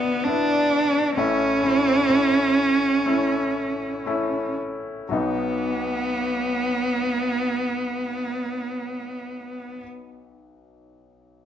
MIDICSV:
0, 0, Header, 1, 3, 480
1, 0, Start_track
1, 0, Tempo, 916031
1, 612, Time_signature, 4, 2, 24, 8
1, 1098, Tempo, 983607
1, 2058, Tempo, 1045296
1, 3978, Tempo, 1060071
1, 5431, End_track
2, 0, Start_track
2, 0, Title_t, "Felt piano"
2, 0, Program_c, 0, 0
2, 0, Control_c, 0, 64, 127
2, 0, Note_on_c, 0, 35, 51
2, 0, Note_on_c, 0, 47, 51
2, 0, Note_on_c, 0, 50, 61
2, 0, Note_on_c, 0, 59, 57
2, 0, Note_on_c, 0, 62, 56
2, 0, Note_on_c, 0, 64, 61
2, 0, Note_on_c, 0, 66, 73
2, 112, Note_off_c, 0, 59, 0
2, 113, Note_off_c, 0, 62, 0
2, 114, Note_off_c, 0, 64, 0
2, 138, Note_on_c, 0, 59, 54
2, 143, Note_on_c, 0, 62, 54
2, 143, Note_on_c, 0, 64, 61
2, 590, Note_off_c, 0, 59, 0
2, 592, Note_off_c, 0, 47, 0
2, 592, Note_off_c, 0, 62, 0
2, 592, Note_off_c, 0, 64, 0
2, 593, Note_off_c, 0, 35, 0
2, 613, Note_on_c, 0, 61, 64
2, 614, Note_on_c, 0, 57, 73
2, 615, Note_on_c, 0, 33, 51
2, 615, Note_on_c, 0, 45, 49
2, 617, Note_on_c, 0, 64, 78
2, 619, Note_off_c, 0, 66, 0
2, 619, Control_c, 0, 64, 0
2, 624, Note_off_c, 0, 50, 0
2, 723, Control_c, 0, 64, 127
2, 842, Note_off_c, 0, 57, 0
2, 842, Note_off_c, 0, 61, 0
2, 844, Note_off_c, 0, 64, 0
2, 855, Note_on_c, 0, 57, 52
2, 858, Note_on_c, 0, 61, 46
2, 858, Note_on_c, 0, 64, 56
2, 1087, Note_off_c, 0, 57, 0
2, 1089, Note_off_c, 0, 61, 0
2, 1089, Note_off_c, 0, 64, 0
2, 1098, Note_on_c, 0, 57, 51
2, 1098, Note_on_c, 0, 61, 51
2, 1102, Note_on_c, 0, 64, 60
2, 1543, Note_off_c, 0, 57, 0
2, 1544, Note_off_c, 0, 61, 0
2, 1546, Note_off_c, 0, 64, 0
2, 1569, Note_on_c, 0, 57, 62
2, 1572, Note_on_c, 0, 61, 56
2, 1572, Note_on_c, 0, 64, 68
2, 2034, Note_off_c, 0, 57, 0
2, 2035, Note_off_c, 0, 61, 0
2, 2035, Note_off_c, 0, 64, 0
2, 2057, Note_on_c, 0, 57, 57
2, 2059, Note_on_c, 0, 61, 53
2, 2061, Note_on_c, 0, 64, 68
2, 2512, Note_off_c, 0, 57, 0
2, 2513, Note_off_c, 0, 61, 0
2, 2514, Note_off_c, 0, 64, 0
2, 2520, Note_off_c, 0, 33, 0
2, 2520, Note_off_c, 0, 45, 0
2, 2529, Note_on_c, 0, 54, 51
2, 2539, Note_on_c, 0, 59, 46
2, 2540, Note_on_c, 0, 35, 54
2, 2544, Control_c, 0, 64, 0
2, 2547, Note_on_c, 0, 63, 55
2, 2634, Control_c, 0, 64, 127
2, 4672, Note_off_c, 0, 54, 0
2, 4682, Note_off_c, 0, 59, 0
2, 4683, Note_off_c, 0, 35, 0
2, 4690, Note_off_c, 0, 63, 0
2, 5431, End_track
3, 0, Start_track
3, 0, Title_t, "Cello"
3, 0, Program_c, 1, 42
3, 0, Note_on_c, 1, 59, 75
3, 127, Note_on_c, 1, 62, 83
3, 135, Note_off_c, 1, 59, 0
3, 608, Note_off_c, 1, 62, 0
3, 611, Note_on_c, 1, 61, 90
3, 2277, Note_off_c, 1, 61, 0
3, 2546, Note_on_c, 1, 59, 70
3, 4688, Note_off_c, 1, 59, 0
3, 5431, End_track
0, 0, End_of_file